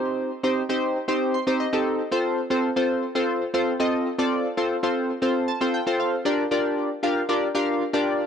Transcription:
\new Staff \with { instrumentName = "Synth keys" } { \time 4/4 \key bes \major \tempo 4 = 116 << { r2 r8 c'''8 ees''4 | r1 | r2 r8 a''8 g''8 f''8 | r1 | } \\ { <c' ees' g' c''>8 r16 <c' ees' g' c''>16 r16 <c' ees' g' c''>8 r16 <c' ees' g' c''>8 r16 <c' ees' g' c''>16 r16 <c' ees' g' a'>8 r16 | <c' f' a' c''>8 r16 <c' f' a' c''>16 r16 <c' f' a' c''>8 r16 <c' f' a' c''>8 r16 <c' f' a' c''>16 r16 <c' f' a' ees''>8 r16 | <c' f' a' d''>8 r16 <c' f' a' c''>16 r16 <c' f' a' c''>8 r16 <c' f' a' c''>8 r16 <c' f' a' c''>16 r16 <c' f' a' c''>8 r16 | <d' f' g' bes' d''>16 r16 <d' f' g' bes' d''>8. r16 <d' f' g' bes' f''>16 r16 <d' f' g' bes' d''>16 r16 <d' f' g' bes' f''>8 r16 <d' f' g' bes' d''>8 r16 | } >> }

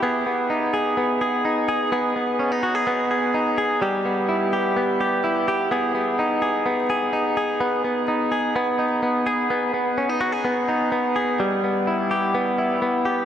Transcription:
\new Staff \with { instrumentName = "Clean electric guitar" } { \time 4/4 \key b \mixolydian \tempo 4 = 127 <b gis'>8 b8 dis'8 gis'8 b8 gis'8 dis'8 gis'8 | <b gis'>8 b8 cis'16 dis'16 fis'16 gis'16 b8 gis'8 dis'8 gis'8 | <g g'>8 b8 e'8 g'8 b8 g'8 e'8 g'8 | <b gis'>8 b8 dis'8 gis'8 b8 gis'8 dis'8 gis'8 |
b8 b8 dis'8 gis'8 b8 dis'8 b8 gis'8 | b8 b8 cis'16 dis'16 fis'16 gis'16 b8 dis'8 b8 gis'8 | g8 b8 e'8 g'8 b8 e'8 b8 g'8 | }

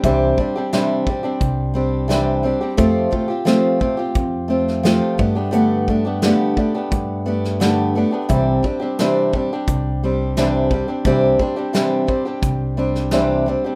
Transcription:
<<
  \new Staff \with { instrumentName = "Steel-string acoustic guitar" } { \time 4/4 \key c \major \tempo 4 = 87 <c e g c' d' g'>8 <g c' d' g'>16 <g c' d' g'>16 <c e g c' d' g'>8 <g c' d' g'>16 <g c' d' g'>8. <g c' d' g'>8 <c e g c' d' g'>8 <g c' d' g'>16 <g c' d' g'>16 | <f a c' f' g'>8 <a c' f' g'>16 <c' f' g'>16 <f a c' f' g'>8 <a c' f' g'>16 <c' f' g'>8. <a c' f' g'>8 <f a c' f' g'>8 <a b d' g'>16 <a b d' g'>16 | <g, d a b d' g'>8 <a b d' g'>16 <a b d' g'>16 <g, d a b d' g'>8 <a b d' g'>16 <a b d' g'>8. <a b d' g'>8 <g, d a b d' g'>8 <a b d' g'>16 <a b d' g'>16 | <c e g c' d' g'>8 <g c' d' g'>16 <g c' d' g'>16 <c e g c' d' g'>8 <g c' d' g'>16 <g c' d' g'>8. <g c' d' g'>8 <c e g c' d' g'>8 <g c' d' g'>16 <g c' d' g'>16 |
<c e g c' d' g'>8 <g c' d' g'>16 <g c' d' g'>16 <c e g c' d' g'>8 <g c' d' g'>16 <g c' d' g'>8. <g c' d' g'>8 <c e g c' d' g'>8 <g c' d' g'>16 <g c' d' g'>16 | }
  \new Staff \with { instrumentName = "Upright bass" } { \clef bass \time 4/4 \key c \major c,8 r4. c,2 | f,8 r4. f,4. g,8~ | g,4. r8 g,2 | c,8 r4. c,2 |
c,8 r4. c,2 | }
  \new DrumStaff \with { instrumentName = "Drums" } \drummode { \time 4/4 <hh bd>8 bd8 <hh sn>8 bd8 <hh bd>4 <hh sn>4 | <hh bd>8 bd8 <hh sn>8 bd8 <hh bd>8. sn16 <hh sn>8 bd8 | hh8 bd8 <hh sn>8 bd8 <hh bd>8. sn16 <hh sn>4 | <hh bd>8 bd8 <hh sn>8 bd8 <hh bd>4 <hh sn>8 bd8 |
<hh bd>8 bd8 <hh sn>8 bd8 <hh bd>8. sn16 <hh sn>4 | }
>>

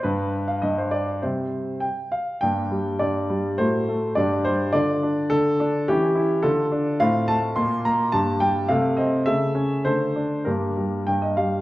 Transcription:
<<
  \new Staff \with { instrumentName = "Grand piano" } { \time 2/4 \key c \minor \tempo 4 = 105 << { b'8. f''16 ees''16 c''16 d''8 | c''4 g''8 f''8 | \key g \minor g''4 d''4 | c''4 d''8 c''8 |
d''4 a'4 | g'4 a'8 r8 | f''8 a''8 c'''8 bes''8 | a''8 g''8 f''8 ees''8 |
e''4 c''4 | bes'4 g''16 ees''16 f''8 | } \\ { r2 | r2 | <bes d'>2 | <a fis'>4 <d' g'>4 |
<d' f'>2 | <cis' e'>4 <d' f'>4 | <c' f'>4 <bes f'>4 | <bes g'>4 <a a'>4 |
<a a'>4 <a a'>4 | <bes g'>2 | } >> }
  \new Staff \with { instrumentName = "Grand piano" } { \clef bass \time 2/4 \key c \minor g,4 g,4 | <c g c'>4 r4 | \key g \minor g,8 g8 g,8 g8 | a,8 a8 g,8 g8 |
d8 d'8 d8 d'8 | e8 e'8 d8 d'8 | a,8 a8 bes,8 bes8 | g,8 g8 c8 c'8 |
cis8 cis'8 d8 d'8 | g,8 g8 g,8 g8 | }
>>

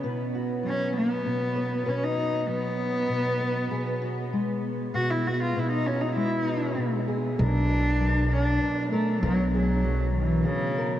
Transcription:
<<
  \new Staff \with { instrumentName = "Cello" } { \time 3/4 \key e \lydian \tempo 4 = 98 r4 cis'8 b4. | cis'16 dis'8. b2~ | b4 r4 fis'16 e'16 fis'16 eis'16 | e'16 dis'16 cis'16 dis'16 e'4 r4 |
d'4. d'4 a8 | fis8 fis4 e8 cis4 | }
  \new Staff \with { instrumentName = "Steel-string acoustic guitar" } { \time 3/4 \key e \lydian << { b'8 fis'2 b'8 | b'8 fis'2 b'8 | gis'8 fis'2 b8 | b8 fis'2 gis'8 |
ais'8 ais'2 ais'8 | ais'8 gis'2 ais'8 | } \\ { b,4 fis4 b,4 | b,4 fis4 b,4 | b,4 gis4 b,4 | b,4 gis4 b,4 |
b,4 fis4 b,4 | b,4 fis4 b,4 | } >> }
  \new Staff \with { instrumentName = "Upright bass" } { \clef bass \time 3/4 \key e \lydian r2. | r2. | r2. | r2. |
b,,2 r4 | b,,2 r4 | }
>>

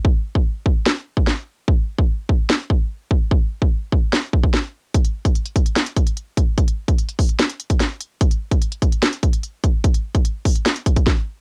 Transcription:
\new DrumStaff \with { instrumentName = "Drums" } \drummode { \time 4/4 \tempo 4 = 147 bd8. bd16 r8 bd8 sn8. bd16 sn4 | bd8. bd16 r8 bd8 sn8 bd8 r8 bd8 | bd8. bd16 r8 bd8 sn8 bd16 bd16 sn4 | <hh bd>16 hh8 <hh bd>16 hh16 hh16 <hh bd>16 hh16 <hh sn>16 hh16 <hh bd>16 hh16 hh8 <hh bd>8 |
<hh bd>16 hh8 <hh bd>16 hh16 hh16 <hho bd>16 hh16 <hh sn>16 hh16 hh16 <hh bd>16 <hh sn>8 hh8 | <hh bd>16 hh8 <hh bd>16 hh16 hh16 <hh bd>16 hh16 <hh sn>16 hh16 <hh bd>16 hh16 hh8 <hh bd>8 | <hh bd>16 hh8 <hh bd>16 hh8 <hho bd>16 hh16 <hh sn>16 hh16 <hh bd>16 <hh bd>16 <bd sn>4 | }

